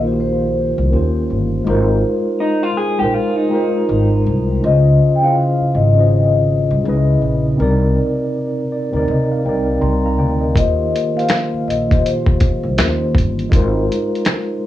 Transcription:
0.00 0.74 A#1 medium
0.00 0.90 D#3 medium
0.00 0.03 A#3 medium
0.00 0.90 A#3 medium
0.00 0.04 F4 medium
0.00 0.12 G4 medium
0.00 0.07 C5 medium
0.04 0.92 F4 medium
0.04 0.94 F#4 soft
0.04 0.94 C5 medium
0.12 0.94 G4 medium
0.20 1.27 C5 medium
0.78 0.92 C2 medium
0.90 1.28 D#2 medium
0.90 1.54 D#3 medium
0.90 1.54 A#3 medium
0.90 1.55 C#4 medium
0.90 1.55 F4 medium
0.95 1.56 G4 medium
0.95 1.57 C5 medium
1.30 1.65 G1 medium
1.64 2.02 G#1 loud
1.64 2.67 G#3 loud
1.64 2.68 D#4 medium
1.64 2.69 F4 loud
1.69 2.69 A#4 medium
1.69 2.70 C5 loud
2.40 2.63 D#4 medium
2.63 2.77 F4 medium
2.77 2.99 G#4 medium
2.98 3.14 A#1 medium
2.98 3.41 G#3 medium
2.98 3.41 D#4 medium
2.98 3.42 F4 medium
2.98 3.14 G4 medium
3.03 3.43 A#4 medium
3.03 3.43 C5 medium
3.14 3.36 F4 medium
3.36 4.44 D#4 medium
3.49 4.38 G#3 medium
3.49 4.38 D#4 medium
3.49 4.39 F4 medium
3.53 4.40 A#4 medium
3.53 4.41 C5 medium
3.89 4.24 G#1 medium
4.27 4.61 C2 medium
4.61 4.98 C#2 loud
4.61 5.06 C#3 medium
4.61 5.06 C#4 medium
4.61 5.07 F4 medium
4.61 5.11 D#5 medium
4.65 5.08 C5 medium
4.65 5.08 D#5 loud
5.15 5.23 G5 medium
5.22 5.75 C#3 medium
5.22 5.76 C#4 medium
5.22 5.28 E4 soft
5.22 5.76 F5 loud
5.26 5.77 C5 medium
5.26 5.78 D#5 medium
5.31 5.79 F4 medium
5.60 muted upright bass stroke soft
5.75 6.67 G#1 medium
5.75 7.19 D#5 medium
5.94 6.82 C#3 medium
5.94 6.84 C#4 medium
5.94 6.86 F4 medium
5.99 6.86 C5 medium
5.99 6.87 D#5 medium
6.71 6.84 C2 medium
6.83 7.20 C#2 medium
6.83 7.47 C#3 medium
6.83 7.47 C#4 medium
6.83 6.94 D#4 medium
6.88 7.49 B4 medium
6.88 7.50 D#5 loud
6.93 7.52 E4 medium
7.22 7.57 A#1 medium
7.56 7.95 C2 loud
7.56 8.59 C3 loud
7.56 8.60 C4 medium
7.56 8.61 D#4 medium
7.61 8.62 A#4 loud
7.61 8.62 D5 loud
8.72 8.96 D5 medium
8.91 9.07 D2 medium
8.91 9.33 C3 medium
8.91 9.34 C4 medium
8.91 9.35 D#4 medium
8.95 9.35 A#4 medium
8.95 9.36 D5 medium
9.08 9.43 C3 medium
9.08 9.30 D#5 medium
9.32 9.45 F5 medium
9.43 9.80 C2 medium
9.43 10.31 C3 medium
9.43 10.32 C4 medium
9.43 10.32 D#4 medium
9.43 9.80 G5 medium
9.47 9.83 A#4 medium
9.47 9.84 D5 medium
9.81 10.19 C2 medium
9.81 10.03 G5 soft
9.81 10.04 A#5 medium
9.81 10.03 C6 medium
10.05 10.19 F5 medium
10.05 10.19 A#5 medium
10.19 10.54 D2 medium
10.19 10.40 D5 medium
10.19 10.40 G5 medium
10.40 10.76 A#4 soft
10.40 10.76 D#5 medium
10.54 10.91 D#2 loud
10.54 10.98 D#3 medium
10.54 10.99 A#3 medium
10.54 11.00 F4 medium
10.54 11.18 D#5 medium
10.54 kick loud
10.54 closed hi-hat medium
10.59 11.01 G4 medium
10.59 11.01 C5 loud
10.96 closed hi-hat medium
11.14 11.68 D#3 medium
11.14 11.68 A#3 medium
11.14 11.69 F4 medium
11.14 11.69 F5 loud
11.19 11.70 G4 medium
11.19 11.71 C5 medium
11.19 closed hi-hat soft
11.29 finger snap medium
11.29 snare loud
11.29 closed hi-hat medium
11.53 muted upright bass stroke soft
11.68 12.60 A#1 medium
11.68 12.06 D#5 medium
11.68 closed hi-hat medium
11.87 12.76 D#3 medium
11.87 12.77 A#3 medium
11.87 12.78 F4 medium
11.87 kick medium
11.91 12.79 G4 medium
11.91 12.80 C5 medium
11.91 closed hi-hat soft
12.05 13.11 C5 medium
12.05 closed hi-hat medium
12.26 kick medium
12.40 kick medium
12.40 closed hi-hat medium
12.64 12.77 C2 medium
12.77 13.13 D#2 medium
12.77 13.40 D#3 medium
12.77 13.40 A#3 medium
12.77 13.41 C#4 medium
12.77 13.41 F4 medium
12.77 finger snap medium
12.77 snare loud
12.77 closed hi-hat medium
12.82 13.42 G4 medium
12.82 12.88 A#4 medium
12.89 13.46 C5 medium
13.15 13.50 G1 medium
13.15 kick medium
13.15 closed hi-hat medium
13.39 closed hi-hat soft
13.49 13.87 G#1 loud
13.49 14.52 G#3 loud
13.49 14.53 D#4 loud
13.49 14.54 F4 loud
13.49 kick loud
13.49 closed hi-hat medium
13.54 14.54 A#4 medium
13.54 14.55 C5 loud
13.92 closed hi-hat medium
14.15 closed hi-hat soft
14.25 finger snap medium
14.25 snare loud
14.25 closed hi-hat medium

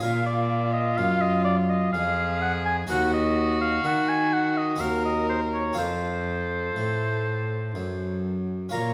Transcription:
0.00 0.99 A#2 loud
0.00 0.94 A#2 medium
0.00 2.83 F4 medium
0.00 2.84 G#4 medium
0.00 2.85 A#4 medium
0.00 0.26 F5 loud
0.04 1.93 F4 loud
0.26 0.73 D5 loud
0.73 0.99 D#5 loud
0.97 1.93 F#2 medium
0.97 1.90 F#2 medium
0.97 1.23 F5 loud
1.21 1.44 D#5 loud
1.45 1.56 D5 loud
1.69 1.92 D#5 loud
1.93 2.87 F2 loud
1.93 2.85 F2 medium
1.93 2.87 G#4 loud
1.93 2.40 F5 loud
2.42 2.53 F#5 loud
2.65 2.76 G#5 loud
2.87 3.82 D#2 loud
2.87 4.75 D#4 medium
2.87 4.75 F#4 medium
2.87 4.76 F#4 loud
2.87 4.76 A#4 medium
2.87 3.13 F#5 loud
2.91 3.81 D#2 medium
3.14 3.60 D#5 loud
3.61 3.87 F5 loud
3.84 4.76 D#3 medium
3.84 4.78 D#3 loud
3.84 4.10 F#5 loud
4.09 4.35 G#5 loud
4.33 4.59 F#5 loud
4.58 4.82 D#5 loud
4.76 5.72 C4 medium
4.76 5.73 F#4 medium
4.76 5.74 C5 medium
4.80 5.76 D#2 loud
4.80 5.74 D#2 medium
4.80 5.80 A#4 loud
4.80 5.05 F5 loud
5.05 5.29 D#5 loud
5.29 5.40 C5 loud
5.54 5.77 C#5 loud
5.73 7.68 C4 medium
5.73 8.68 F4 medium
5.73 8.69 A4 medium
5.78 6.72 F2 medium
5.78 6.74 F2 medium
5.78 8.25 A4 medium
5.78 8.21 C5 loud
6.76 7.76 A2 medium
6.76 7.71 A2 medium
7.75 8.73 F#2 medium
7.75 8.70 F#2 medium
8.69 8.94 C#4 medium
8.69 8.94 F4 medium
8.69 8.94 A#4 medium
8.69 8.94 A#5 loud
8.74 8.94 A#2 medium
8.74 8.94 C#5 loud

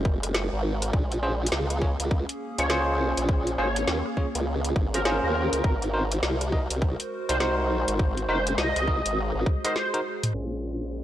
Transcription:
0.00 0.50 F#1 medium
0.00 0.89 G#3 medium
0.00 0.90 F#4 medium
0.00 0.89 A#4 medium
0.00 0.89 C5 medium
0.05 kick loud
0.23 cross-stick soft
0.23 closed hi-hat medium
0.34 snare loud
0.53 0.92 G#1 loud
0.82 cross-stick medium
0.82 closed hi-hat medium
0.93 1.50 A#1 medium
0.93 5.60 A#3 medium
0.93 5.60 C#4 medium
0.93 5.60 G#4 medium
0.93 kick loud
1.12 closed hi-hat soft
1.23 1.31 C#4 medium
1.23 1.32 F4 medium
1.23 1.31 G#4 medium
1.23 1.32 C5 loud
1.46 closed hi-hat medium
1.52 1.97 C#2 loud
1.52 snare loud
1.70 cross-stick soft
1.70 closed hi-hat soft
1.82 1.90 C#4 medium
1.82 1.90 F4 medium
1.82 1.90 G#4 medium
1.82 1.90 C#5 medium
1.82 kick medium
2.00 2.26 C#2 loud
2.00 closed hi-hat medium
2.11 kick loud
2.29 closed hi-hat medium
2.58 3.14 C#2 loud
2.58 2.64 C#4 medium
2.58 2.64 F4 medium
2.58 2.64 G#4 medium
2.58 2.64 C5 medium
2.58 2.66 C#5 medium
2.58 closed hi-hat medium
2.70 3.55 C#4 loud
2.70 3.55 F4 medium
2.70 3.55 G#4 medium
2.70 3.55 C5 loud
2.70 2.81 C#5 medium
2.70 snare loud
3.17 3.56 A#1 medium
3.17 closed hi-hat medium
3.29 kick loud
3.47 closed hi-hat soft
3.58 3.86 G#1 loud
3.58 3.67 C#4 medium
3.58 3.67 F4 medium
3.58 3.67 G#4 medium
3.58 3.67 C5 loud
3.58 3.82 C#5 medium
3.76 closed hi-hat medium
3.88 4.03 D#2 loud
3.88 snare loud
4.06 cross-stick soft
4.17 4.26 C#4 medium
4.17 4.26 F4 medium
4.17 4.26 G#4 medium
4.17 4.26 C#5 medium
4.17 kick medium
4.35 4.74 C#2 loud
4.35 closed hi-hat medium
4.65 closed hi-hat soft
4.76 5.20 G#1 loud
4.76 kick loud
4.94 4.99 C#4 medium
4.94 4.99 F4 medium
4.94 4.99 G#4 medium
4.94 5.01 A#4 medium
4.94 4.99 C5 medium
4.94 cross-stick medium
4.94 closed hi-hat medium
5.05 5.63 C#4 loud
5.05 5.63 F4 medium
5.05 5.63 G#4 medium
5.05 5.17 A#4 medium
5.05 5.63 C5 loud
5.05 snare loud
5.24 5.50 D#2 loud
5.24 5.71 A#4 medium
5.53 5.62 C#2 loud
5.53 cross-stick medium
5.53 closed hi-hat medium
5.64 6.21 G#1 loud
5.64 10.31 G#3 medium
5.64 10.31 F#4 medium
5.64 7.97 A#4 medium
5.64 10.31 C5 medium
5.64 kick loud
5.82 closed hi-hat soft
5.94 6.02 D#4 medium
5.94 6.02 F#4 medium
5.94 6.02 A#4 medium
5.94 6.02 C5 loud
6.12 closed hi-hat medium
6.23 6.68 C2 loud
6.23 snare loud
6.41 cross-stick soft
6.41 closed hi-hat medium
6.52 6.61 D#4 medium
6.52 6.61 F#4 medium
6.52 6.61 A#4 medium
6.52 6.61 D#5 medium
6.52 kick medium
6.70 6.97 C2 medium
6.70 closed hi-hat medium
6.82 kick loud
7.00 closed hi-hat medium
7.29 7.85 C2 loud
7.29 7.35 D#4 medium
7.29 7.35 F#4 medium
7.29 7.35 A#4 medium
7.29 7.35 C5 medium
7.29 7.37 C5 medium
7.29 closed hi-hat medium
7.40 8.26 D#4 loud
7.40 8.26 F#4 medium
7.40 8.26 A#4 medium
7.40 8.26 C5 loud
7.40 7.52 C5 medium
7.40 snare loud
7.88 8.27 G#1 loud
7.88 closed hi-hat medium
7.99 10.32 G#4 medium
7.99 kick loud
8.17 closed hi-hat soft
8.29 8.56 F#1 loud
8.29 8.37 D#4 medium
8.29 8.37 F#4 medium
8.29 8.37 A#4 medium
8.29 8.37 C5 loud
8.29 8.53 C5 medium
8.47 closed hi-hat medium
8.58 8.73 C2 loud
8.58 9.17 D#5 loud
8.58 snare loud
8.76 9.03 C2 loud
8.76 cross-stick soft
8.76 closed hi-hat medium
8.87 8.96 D#4 medium
8.87 8.96 F#4 medium
8.87 8.96 A#4 medium
8.87 8.96 D#5 medium
8.87 kick medium
9.06 9.32 G#1 loud
9.06 closed hi-hat medium
9.35 9.44 G#1 loud
9.46 kick loud
9.64 9.73 D#4 medium
9.64 9.73 F#4 medium
9.64 9.73 A#4 medium
9.64 9.72 C5 medium
9.64 9.73 D#5 loud
9.64 cross-stick medium
9.64 closed hi-hat medium
9.76 9.87 C5 medium
9.76 snare medium
9.94 9.99 D#4 medium
9.94 9.99 F#4 medium
9.94 9.99 A#4 medium
9.94 9.99 C5 loud
9.94 closed hi-hat soft
10.23 closed hi-hat medium
10.23 mid tom medium
10.34 11.04 A#1 medium
10.34 11.04 A#3 medium
10.34 11.04 C#4 medium
10.34 11.04 F4 medium
10.34 11.04 G#4 medium
10.34 11.04 C5 medium
10.34 crash medium
10.82 closed hi-hat medium

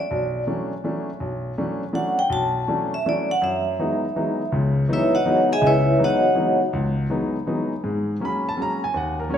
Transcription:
0.00 0.43 D5 medium
0.11 0.42 B1 medium
0.47 0.72 E3 medium
0.47 0.72 F#3 medium
0.47 0.72 A3 soft
0.47 0.72 C#4 soft
0.47 0.72 D4 medium
0.84 1.09 E3 medium
0.84 1.09 F#3 soft
0.84 1.09 A3 medium
0.84 1.09 C#4 soft
0.84 1.09 D4 medium
1.20 1.52 B1 medium
1.58 1.83 E3 medium
1.58 1.83 F#3 medium
1.58 1.83 A3 medium
1.58 1.83 C#4 soft
1.58 1.83 D4 medium
1.93 2.19 E3 medium
1.93 2.18 F#3 soft
1.93 2.19 A3 medium
1.93 2.19 C#4 soft
1.93 2.19 D4 medium
1.93 2.18 F#5 medium
2.19 2.31 G5 medium
2.30 2.62 B1 medium
2.30 2.88 A5 medium
2.68 2.93 E3 medium
2.68 2.93 F#3 medium
2.68 2.93 A3 medium
2.68 2.93 C#4 medium
2.68 2.93 D4 medium
2.94 3.05 E5 medium
3.06 3.30 E3 medium
3.06 3.30 F#3 soft
3.06 3.30 A3 soft
3.06 3.31 C#4 soft
3.06 3.31 D4 medium
3.06 3.30 D5 medium
3.31 3.42 F#5 loud
3.42 3.73 F#2 medium
3.42 4.49 E5 medium
3.79 4.04 E3 medium
3.79 4.04 F#3 medium
3.79 4.04 G#3 medium
3.79 4.04 B3 medium
3.79 4.04 D#4 medium
4.16 4.41 E3 medium
4.16 4.41 F#3 medium
4.16 4.41 G#3 soft
4.16 4.41 B3 soft
4.16 4.41 D#4 medium
4.52 4.84 C#2 medium
4.52 4.84 C#3 medium
4.88 5.14 E3 medium
4.88 5.14 F#3 medium
4.88 5.14 G#3 medium
4.88 5.14 B3 medium
4.88 5.14 D#4 medium
4.93 5.14 E4 medium
4.93 5.15 B4 medium
4.93 5.14 C#5 medium
4.93 5.14 E5 medium
5.15 5.48 F#4 medium
5.15 5.48 C#5 medium
5.15 5.49 D#5 medium
5.15 5.48 F#5 medium
5.25 5.51 E3 medium
5.25 5.51 F#3 medium
5.25 5.51 G#3 medium
5.25 5.51 B3 medium
5.25 5.51 D#4 medium
5.53 5.63 G#4 medium
5.53 5.64 D#5 medium
5.53 5.64 E5 medium
5.53 5.64 G#5 loud
5.61 5.94 C#2 medium
5.61 5.94 C#3 medium
5.66 5.99 E4 medium
5.66 5.99 B4 medium
5.66 5.99 C#5 medium
5.66 5.99 E5 medium
5.99 6.24 E3 medium
5.99 6.24 F#3 medium
5.99 6.24 G#3 medium
5.99 6.24 B3 medium
5.99 6.24 D#4 medium
6.04 6.59 F#4 medium
6.04 6.59 C#5 medium
6.04 6.59 D#5 medium
6.04 6.59 F#5 medium
6.35 6.61 E3 medium
6.35 6.61 F#3 medium
6.35 6.61 G#3 medium
6.35 6.61 B3 soft
6.35 6.61 D#4 medium
6.73 7.05 C#2 medium
7.10 7.35 E3 medium
7.10 7.35 F#3 medium
7.10 7.35 G#3 medium
7.10 7.36 B3 medium
7.10 7.36 D#4 medium
7.47 7.72 E3 medium
7.47 7.72 F#3 medium
7.47 7.72 G#3 medium
7.47 7.72 B3 medium
7.47 7.72 D#4 medium
7.84 8.16 G#2 medium
7.84 8.16 G#3 medium
8.20 8.46 F#3 medium
8.20 8.46 G#3 soft
8.20 8.46 A#3 soft
8.20 8.46 C#4 medium
8.25 8.46 B5 medium
8.49 8.59 A5 medium
8.57 8.82 F#3 medium
8.57 8.82 G#3 soft
8.57 8.83 A#3 soft
8.57 8.83 C#4 medium
8.62 8.83 A#5 medium
8.84 8.95 G#5 medium
8.94 9.26 D#2 medium
8.94 9.19 F#5 medium
9.20 9.31 A#4 medium
9.29 9.38 F#3 medium
9.29 9.38 G#3 soft
9.29 9.38 A#3 medium
9.29 9.38 C#4 medium
9.34 9.38 C#5 medium

